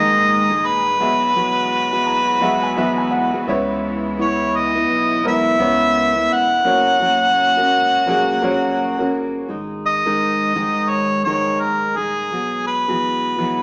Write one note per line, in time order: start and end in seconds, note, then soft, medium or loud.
0.00 0.61 G#1 loud
0.00 0.51 G#2 medium
0.00 0.99 A#2 medium
0.00 0.51 D#3 medium
0.00 0.98 D#3 medium
0.00 0.51 G#3 medium
0.00 6.63 G#3 medium
0.00 1.03 A#3 medium
0.00 0.50 D#4 medium
0.00 0.98 D#4 medium
0.00 0.50 G#4 medium
0.00 0.98 G#4 medium
0.00 1.03 G#4 medium
0.00 0.52 A#4 medium
0.00 0.68 D#5 loud
0.00 1.03 D#5 medium
0.51 0.99 G#3 soft
0.51 1.00 D#4 soft
0.51 1.00 G#4 medium
0.65 0.98 D#1 loud
0.65 3.49 B4 medium
1.00 2.02 E1 medium
1.00 6.63 E3 medium
1.00 1.34 F#3 medium
1.00 3.46 F#3 medium
1.00 2.35 G#3 medium
1.00 1.35 B3 medium
1.00 6.63 B3 medium
1.00 2.36 F#4 medium
1.00 1.35 F#4 medium
1.00 3.46 F#4 medium
1.00 1.36 G#4 medium
1.00 2.36 E5 medium
1.35 1.92 F#3 medium
1.35 1.92 B3 medium
1.35 1.91 F#4 medium
1.35 1.90 G#4 medium
1.91 2.40 B3 medium
1.91 2.41 F#4 medium
1.91 2.41 G#4 medium
2.06 2.73 F#1 loud
2.06 2.26 A#5 medium
2.27 2.41 B5 medium
2.40 2.76 F#3 medium
2.40 2.74 G#3 medium
2.40 2.77 B3 medium
2.40 2.77 F#4 medium
2.40 2.75 F#4 medium
2.40 2.77 G#4 medium
2.40 2.76 E5 loud
2.40 2.62 F#5 medium
2.63 2.96 G#5 medium
2.76 3.44 E1 medium
2.76 3.34 E3 medium
2.76 3.34 F#3 medium
2.76 3.47 G#3 medium
2.76 3.34 B3 medium
2.76 3.48 F#4 medium
2.76 3.33 F#4 medium
2.76 3.32 G#4 loud
2.76 3.46 E5 medium
2.98 3.11 G#5 medium
3.11 3.45 F#5 medium
3.33 3.47 B3 medium
3.33 3.48 F#4 medium
3.33 3.48 G#4 medium
3.47 4.85 C#2 medium
3.47 9.45 C#3 medium
3.47 4.19 C#3 medium
3.47 4.17 G#3 medium
3.47 4.83 B3 medium
3.47 4.18 B3 medium
3.47 4.83 E4 medium
3.47 6.63 E4 medium
3.47 4.18 E4 medium
3.47 4.19 B4 medium
3.47 4.84 C#5 loud
3.47 3.81 E5 medium
4.18 4.75 G#3 medium
4.18 4.75 B3 medium
4.18 4.75 E4 medium
4.18 4.74 B4 medium
4.18 4.58 C#5 medium
4.56 5.26 D#5 medium
4.75 5.24 B3 soft
4.75 5.24 E4 soft
4.75 5.25 B4 medium
4.89 5.56 B1 loud
5.23 5.58 G#3 medium
5.23 5.58 B3 medium
5.23 5.58 E4 medium
5.23 5.59 A#4 medium
5.23 5.59 B4 medium
5.28 6.34 E5 loud
5.58 6.26 C#2 loud
5.58 6.16 C#3 medium
5.58 6.16 G#3 medium
5.58 6.61 B3 medium
5.58 6.15 B3 medium
5.58 6.14 E4 medium
5.58 6.62 E4 medium
5.58 6.14 B4 medium
5.58 6.62 C#5 medium
6.15 6.64 B3 soft
6.15 6.65 E4 soft
6.15 6.65 B4 medium
6.31 6.63 E1 loud
6.31 9.15 F#5 loud
6.64 7.68 F#1 loud
6.64 9.46 A#2 medium
6.64 6.99 F#3 medium
6.64 9.46 F#3 medium
6.64 8.00 A#3 medium
6.64 7.00 C#4 medium
6.64 9.46 C#4 medium
6.64 8.01 F#4 medium
6.64 7.01 F#4 medium
6.64 9.46 F#4 medium
6.64 7.01 A#4 medium
6.64 8.01 C#5 medium
7.00 7.58 F#3 medium
7.00 7.58 C#4 medium
7.00 7.57 F#4 medium
7.00 7.56 A#4 medium
7.57 8.06 C#4 soft
7.57 8.07 F#4 medium
7.57 8.07 A#4 medium
7.72 8.39 E1 medium
8.07 8.42 F#3 medium
8.07 8.40 A#3 medium
8.07 8.42 C#4 medium
8.07 8.41 F#4 medium
8.07 8.42 F#4 medium
8.07 8.42 G#4 loud
8.07 8.43 A#4 medium
8.42 9.45 F#1 loud
8.42 9.00 F#3 medium
8.42 9.44 A#3 medium
8.42 9.00 C#4 medium
8.42 9.44 F#4 medium
8.42 8.99 F#4 medium
8.42 8.98 A#4 loud
8.42 9.45 C#5 medium
8.99 9.49 C#4 soft
8.99 9.49 F#4 medium
8.99 9.49 A#4 medium
9.48 10.02 G#1 medium
9.48 10.05 G#3 medium
9.48 10.06 D#4 medium
9.48 10.05 G#4 medium
9.48 10.05 A#4 medium
9.86 10.91 D#5 loud
10.05 10.51 G#1 loud
10.05 10.54 G#2 medium
10.05 10.54 D#3 medium
10.05 10.55 G#3 medium
10.05 10.54 D#4 medium
10.05 10.55 G#4 medium
10.05 10.55 A#4 medium
10.55 11.22 G#1 medium
10.55 11.24 G#2 medium
10.55 11.25 D#3 medium
10.55 11.26 G#3 medium
10.55 11.25 D#4 medium
10.55 11.26 G#4 medium
10.55 11.26 A#4 medium
10.90 11.24 C#5 medium
11.25 11.93 F#1 medium
11.25 11.97 G#2 medium
11.25 11.97 D#3 medium
11.25 11.96 G#3 medium
11.25 11.96 D#4 medium
11.25 11.98 G#4 medium
11.25 11.98 A#4 medium
11.25 11.62 C#5 medium
11.61 11.98 A#4 medium
11.96 12.29 D#1 medium
11.96 12.32 G#3 soft
11.96 12.32 D#4 medium
11.96 12.66 G#4 medium
11.96 12.33 G#4 medium
11.96 12.33 A#4 medium
12.31 12.84 E1 loud
12.31 12.88 F#3 medium
12.31 12.88 B3 medium
12.31 12.87 F#4 medium
12.31 12.87 G#4 medium
12.67 13.63 B4 medium
12.88 13.34 E1 loud
12.88 13.37 E3 medium
12.88 13.37 F#3 medium
12.88 13.37 B3 medium
12.88 13.38 F#4 medium
12.88 13.38 G#4 medium
13.37 13.63 E1 loud
13.37 13.63 E3 medium
13.37 13.63 F#3 medium
13.37 13.63 B3 medium
13.37 13.63 F#4 medium
13.37 13.63 G#4 medium